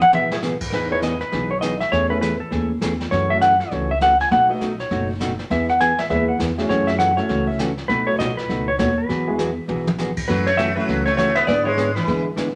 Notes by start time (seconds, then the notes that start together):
0.01 F#5, mid tom
0.13 B1 E3 B3 E4 G#4 E5, mid tom
0.31 G#4, snare
0.42 E3 B3 E4 G#4, snare, hi-hat pedal
0.61 kick, crash
0.70 E2 E3 B3 D#4 G#4 A#4 B4, brush sweep, kick, snare
0.91 B3 D#4 E4 G#4 B4 C#5
1.02 E3 B3 D#4 G#4 D#5, kick, snare, hi-hat pedal
1.20 B4, snare
1.32 B1 E3 B3 D#4 G#4, brush sweep, kick, snare
1.51 C#5
1.61 E3 B3 D#4 G#4 D#5, kick, snare, hi-hat pedal
1.80 E5, snare
1.92 E2 E3 A3 C#4 G#4 C#5, brush sweep, kick, snare
2.10 A3 C#4 E4 G#4 A4 B4
2.21 E3 A3 C#4 G#4 B4, kick, snare, hi-hat pedal
2.40 A4
2.51 D#2 E3 A3 C#4 G#4, brush sweep, kick, snare
2.81 E2 E3 A3 C#4 G#4, kick, snare, hi-hat pedal
3.00 snare
3.11 F#2 C#3 E3 A3 C#4 F#4 C#5, brush sweep, kick, snare
3.29 A3 C#4 E4 F#4 A4 E5
3.41 C#3 E3 A3 C#4 F#4 F#5, kick, snare, hi-hat pedal
3.60 C#5, snare
3.71 C#2 C#3 E3 A3 C#4 F#4, brush sweep, kick, snare
3.91 E5
4.01 C#3 E3 A3 C#4 F#4 F#5, kick, snare, hi-hat pedal
4.20 G#5, snare
4.31 B1 B2 F#3 A3 D#4 F#4 F#5, brush sweep, kick, snare
4.49 A3 B3 D#4 F#4 A4 D#5
4.61 B2 F#3 A3 D#4 F#4, kick, snare, hi-hat pedal
4.79 C#5, snare
4.90 F#1 B2 F#3 A3 D#4 F#4, brush sweep, kick, snare
5.20 B2 F#3 A3 D#4 F#4, kick, snare, hi-hat pedal
5.39 snare
5.50 E2 E3 B3 E4 G#4 E5, brush sweep, kick, snare
5.69 F#5, snare
5.80 E3 B3 E4 G#4 G#5, kick, snare, hi-hat pedal
5.98 E5, snare
6.09 D#2 E3 G#3 B3 E4 G#4 B4 E5, brush sweep, kick, snare
6.28 F#5
6.39 E2 E3 B3 E4 G#4, kick, snare, hi-hat pedal
6.58 A3 C#4 E4 F#4 G#4, snare
6.69 F#2 C#3 E3 A3 C#4 F#4 C#5, brush sweep, kick, snare
6.87 E5, snare
6.99 C#3 E3 A3 C#4 F#4 F#5, kick, snare, hi-hat pedal
7.17 A3 C#4 E4 F#4 A4 C#5, snare
7.28 C#2 C#3 E3 A3 C#4 F#4, brush sweep, kick, snare
7.47 E5
7.58 C#3 E3 A3 C#4 F#4, kick, snare, hi-hat pedal
7.77 snare
7.88 B1 B2 F#3 A3 D#4 F#4 B4, brush sweep, kick, snare
8.07 A3 B3 D#4 F#4 A4 C#5
8.18 B1 B2 F#3 A3 D#4 F#4 D#5, kick, snare, hi-hat pedal
8.37 B4, snare
8.49 C#2 B2 F#3 A3 D#4 F#4, brush sweep, kick, snare
8.68 C#5
8.78 D#2 B2 F#3 A3 D#4 F#4 C#5, kick, snare, hi-hat pedal
8.98 B4
9.08 E2 E3 F#3 B3 F#4 G#4, brush sweep, kick, snare
9.28 G#3 B3 E4 F#4 G#4
9.38 E3 F#3 B3 F#4 G#4, kick, snare, hi-hat pedal
9.68 B1 E3 F#3 B3 F#4 G#4, mid tom
9.87 mid tom
9.98 E3 F#3 B3 F#4 G#4, snare, hi-hat pedal
10.17 kick, crash
10.28 F#2 C#3 E3 F#3 A3 C#4 F#4 B4, brush sweep, kick, snare
10.47 A3 C#5
10.57 C#3 E3 A3 C#4 F#4 E5, kick, snare, hi-hat pedal
10.76 F#3 A3 C#4 E4 F#4 A4 B4
10.88 C#2 C#3 E3 A3 C#4 F#4, brush sweep, kick, snare
11.05 A3 C#5, snare
11.17 C#3 E3 A3 C#4 E4 F#4 A4 C#5, kick, snare, hi-hat pedal
11.35 B3 E5, snare
11.47 G#2 D3 G#3 B3 E4 G#4 D5, brush sweep, kick, snare
11.65 G#3 B3 D4 E4 G#4 B4 C#5
11.77 D3 G#3 B3 E4 G#4, kick, snare, hi-hat pedal
11.95 E3 B4, snare
12.07 D3 E3 G#3 B3 E4 G#4, brush sweep, kick, snare
12.36 D3 G#3 B3 E4 G#4, kick, snare, hi-hat pedal